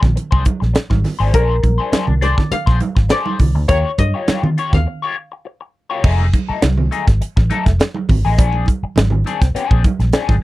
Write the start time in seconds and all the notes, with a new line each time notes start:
Already playing: A#4 C5
0.02 A#1, muted clean electric guitar stroke, kick, snare, low conga
0.16 muted clean electric guitar stroke, closed hi-hat, muted conga
0.31 C2 D4 G#4 C5, kick, muted conga
0.45 muted clean electric guitar stroke, kick, closed hi-hat, high conga
0.60 A#1, muted clean electric guitar stroke, snare
0.73 muted clean electric guitar stroke, muted fingered electric bass stroke, snare, closed hi-hat, muted conga
0.90 G#1, muted clean electric guitar stroke, kick, snare, muted conga, high conga
1.04 snare, open hi-hat, low conga
1.19 G#1 D4 G#4 C5
1.33 A#1 D4 G#4 A#4 C5, kick, closed hi-hat, muted conga
1.63 A#1, muted clean electric guitar stroke, kick, closed hi-hat, high conga
1.78 D4 G#4 C5
1.92 D4 G#4 C5, muted fingered electric bass stroke, snare, closed hi-hat, high conga
2.07 C2, muted clean electric guitar stroke, low conga
2.21 D4 G#4 C5 D5, closed hi-hat
2.37 muted clean electric guitar stroke, kick, snare, low conga
2.51 F5, muted fingered electric bass stroke, muted clean electric guitar stroke, closed hi-hat, muted conga
2.66 A#1 D4 G#4 C5, kick, snare, muted conga
2.80 muted clean electric guitar stroke, closed hi-hat, high conga
2.95 G#1, muted clean electric guitar stroke, kick, snare
3.09 D4 G#4 C5 D5, snare, closed hi-hat
3.26 muted conga, high conga
3.39 C2, muted clean electric guitar stroke, kick, open hi-hat, low conga
3.55 D2, muted clean electric guitar stroke
3.68 D#2 F4 G4 A#4 C#5, kick, closed hi-hat, muted conga
3.98 G2 D#5, muted clean electric guitar stroke, kick, closed hi-hat, high conga
4.14 F4 G4 C#5
4.28 F4 G4 C#5, muted fingered electric bass stroke, snare, closed hi-hat, muted conga, high conga
4.43 D#3, muted clean electric guitar stroke, muted conga, low conga
4.58 F4 G4 C#5, closed hi-hat
4.73 D#2 F5, muted clean electric guitar stroke, kick, snare, low conga
4.86 muted clean electric guitar stroke
5.02 F4 G4 C#5
5.17 muted clean electric guitar stroke
5.32 muted clean electric guitar stroke
5.45 muted clean electric guitar stroke
5.61 muted clean electric guitar stroke
5.90 F4 G4 C#5
6.04 F1 A3 D#4 G#4, kick, crash
6.20 muted conga
6.33 muted clean electric guitar stroke, kick, closed hi-hat, high conga
6.49 A3 D#4 A4, muted fingered electric bass stroke
6.62 C2, muted clean electric guitar stroke, snare, closed hi-hat, muted conga, high conga
6.77 low conga
6.91 A3 D#4 G#4, closed hi-hat, high conga
7.07 G#1, muted clean electric guitar stroke, kick, snare, closed hi-hat
7.21 muted clean electric guitar stroke, muted fingered electric bass stroke, closed hi-hat
7.36 A1, muted clean electric guitar stroke, kick, snare, muted conga
7.50 A3 D#4 A4, closed hi-hat, high conga
7.66 F1, muted clean electric guitar stroke, kick, snare, closed hi-hat
7.79 muted clean electric guitar stroke, snare, closed hi-hat, muted conga
7.94 muted clean electric guitar stroke, muted conga, high conga
8.09 G#1, kick, open hi-hat, low conga
8.24 A1 A3 D#4 G#4
8.38 A#1 C4 D4 G#4, kick, closed hi-hat, muted conga
8.52 muted conga
8.66 kick, closed hi-hat, high conga
8.83 muted fingered electric bass stroke, muted clean electric guitar stroke
8.96 G#1, muted clean electric guitar stroke, snare, closed hi-hat, high conga
9.10 muted clean electric guitar stroke, low conga
9.24 C4 D4 G#4, closed hi-hat, high conga
9.41 C2, muted clean electric guitar stroke, kick, snare, closed hi-hat
9.55 B3 C#4 G4, muted fingered electric bass stroke, closed hi-hat
9.66 C4 D4 G#4
9.71 A#1, kick
9.84 muted clean electric guitar stroke, kick, closed hi-hat, high conga
9.99 A#1, muted clean electric guitar stroke, snare, closed hi-hat
10.13 C4 D4 G#4, snare, closed hi-hat, muted conga
10.29 G#1, kick, snare, high conga